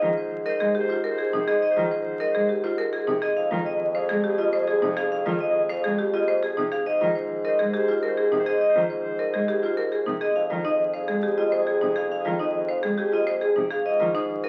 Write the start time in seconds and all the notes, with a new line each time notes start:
Already playing: G#2
0.02 D#3 F4
0.17 C5
0.46 A#4 C5 D#5
0.60 G#3 G#4
0.75 G4
0.79 C5
0.89 F4 C5
1.04 A#4
1.10 C5
1.18 G#4
1.33 C3 D#4
1.40 C5
1.48 G#4 D#5
1.62 D#5
1.70 C5
1.76 D#3 F4
1.91 C5
2.01 C5
2.20 A#4 D#5
2.31 G#3 G#4 C5
2.49 G4
2.61 F4 C5
2.78 A#4
2.92 G#4 C5
3.07 C3 D#4
3.22 G#4 D#5
3.36 F2 G#4 F5
3.51 D#3 F4
3.66 G#4 D#5
3.95 G#4 C5 F5
4.09 G#3 G#4
4.24 G4 G#4
4.38 F4 D#5
4.53 C5
4.58 G#4
4.67 G#4
4.82 C3 D#4
4.88 G#4
4.97 G#4 F5
5.12 F5
5.20 G#4
5.26 D#3 F4
5.40 D#5
5.50 G#4
5.69 C5 F5
5.81 G#4
5.85 G#3
5.98 G4
6.11 F4 G#4 D#5
6.28 C5
6.42 G#4
6.57 C3 D#4
6.72 G#4 F5
6.86 G#2 C5 D#5
7.01 D#3 F4
7.15 C5
7.45 A#4 C5 D#5
7.59 G#3 G#4
7.74 G4 G#4 C5
7.88 F4 C5
8.03 A#4
8.08 C5
8.17 G#4
8.32 C3 D#4
8.39 C5
8.46 G#4 D#5
8.61 D#5
8.69 C5
8.75 D#3 F4
8.90 C5
8.99 C5
9.19 A#4 D#5
9.29 C5
9.34 G#3 G#4
9.48 G4 G#4
9.60 F4 C5
9.77 A#4
9.90 G#4 C5
10.06 C3 D#4
10.21 G#4 D#5
10.36 F2 G#4 F5
10.50 D#3 F4
10.65 D#4 G#4 D#5
10.94 G#4 C5 F5
11.08 G#3 G#4
11.23 G4 G#4
11.37 F4 D#5
11.52 C5
11.58 G#4
11.67 G#4
11.81 C3 D#4
11.88 G#4
11.96 G#4 F5
12.12 F5
12.19 G#4
12.25 D#3 F4
12.39 D#4 D#5
12.48 G#4
12.69 C5 F5
12.79 G#4
12.83 G#3
12.98 G4 G#4
13.10 F4 G#4 D#5
13.27 C5
13.41 G#4
13.56 C3 D#4
13.71 G#4 F5
13.85 G#2 F4 D#5
14.00 D#3 F4
14.15 D#4 F4 C5
14.44 F4 A#4 D#5